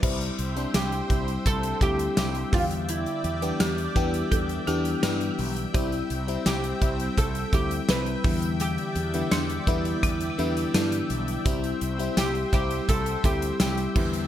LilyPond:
<<
  \new Staff \with { instrumentName = "Analog synth pad" } { \time 4/4 \key c \major \tempo 4 = 84 << { <e'' g''>1~ | <e'' g''>1~ | <e'' g''>1~ | <e'' g''>1~ |
<e'' g''>1 | } \\ { c''2.~ c''8 d''8~ | d''1 | c'2.~ c'8 d''8~ | d''1 |
c''2.~ c''8 d''8 | } >> }
  \new Staff \with { instrumentName = "Oud" } { \time 4/4 \key c \major r4 g'4 a'8 g'8 g'8 f'8 | e'2 r2 | r4 g'4 a'8 g'8 b'4 | g'2 r2 |
r4 g'8 g'8 a'8 g'8 g'4 | }
  \new Staff \with { instrumentName = "Marimba" } { \time 4/4 \key c \major r1 | r4 g'4 a'8 g'8 g'4 | e'8. r2. r16 | r4 d'4 e'4 e'4~ |
e'8. r2. r16 | }
  \new Staff \with { instrumentName = "FM electric piano" } { \time 4/4 \key c \major <g c' e'>8 r16 <g c' d'>8 r16 <g c' e'>8. r16 <g c' e'>8 <g c' e'>8 <d g b d' g'>8~ | <d g b d' g'>8 r16 <e g b d' g'>8 r16 <e g b d' g'>8. r16 <e g b d' g'>8 <e g b d' g'>8. r16 | <g c' e'>8 r16 <g c' e'>8 r16 <g c' e'>8. r16 <g c' e'>8 <g c' e'>8 <d e g b e'>8~ | <d e g b e'>8 r16 <d e g b e'>8 r16 <d e g b e'>8. r16 <d e g b e'>8 <d e g b d'>8. r16 |
<g c' e'>8 r16 <g c' e'>8 r16 <g c' e'>8. r16 <g c' e'>8 <g c' e'>8 <d e g b e'>8 | }
  \new Staff \with { instrumentName = "Fretless electric bass" } { \clef bass \time 4/4 \key c \major c,8 c,8 c,8 c,8 c,8 d,8 c,8 e,8~ | e,8 e,8 e,8 e,8 e,8 e,8 g,8 b,,8 | c,8 c,8 c,8 c,8 c,8 d,8 c,8 e,8~ | e,8 e,8 e,8 e,8 e,8 e,8 g,8 b,,8 |
c,8 c,8 c,8 c,8 c,8 d,8 c,8 e,8 | }
  \new DrumStaff \with { instrumentName = "Drums" } \drummode { \time 4/4 <cymc bd>16 hh16 hh16 hh16 <hh sn tamb>16 hh16 <hh bd>16 hh16 <hh bd>16 hh16 <hh bd>16 hh16 <hh sn tamb>16 hh16 <hho bd>16 hh16 | hh16 hh16 hh16 hh16 <hh sn tamb>16 hh16 <hh bd>16 hh16 <hh bd>16 hh16 hh16 hh16 <hh sn tamb>16 hh16 hho16 hh16 | <hh bd>16 hh16 hh16 hh16 <hh sn tamb>16 hh16 <hh bd>16 hh16 <hh bd>16 hh16 <hh bd>16 hh16 <hh sn tamb>16 hh16 <hho bd>16 hh16 | hh16 hh16 hh16 hh16 <hh sn tamb>16 hh16 <hh bd>16 hh16 <hh bd>16 hh16 hh16 hh16 <hh sn tamb>16 hh16 hh16 hh16 |
<hh bd>16 hh16 hh16 hh16 <hh sn tamb>16 hh16 <hh bd>16 hh16 <hh bd>16 hh16 <hh bd>16 hh16 <hh sn tamb>16 hh16 <cymc bd>16 hh16 | }
>>